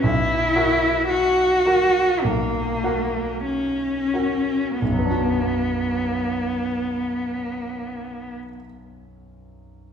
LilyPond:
<<
  \new Staff \with { instrumentName = "Grand piano" } { \time 4/4 \key b \minor \tempo 4 = 46 b,,8 <fis' ais' fis''>4 <fis' ais' fis''>8 b,,8 <fis' ais' fis''>4 <fis' ais' fis''>8 | <b,, fis, fis b d' fis'>1 | }
  \new Staff \with { instrumentName = "Cello" } { \time 4/4 \key b \minor e'4 fis'4 ais4 cis'4 | b1 | }
>>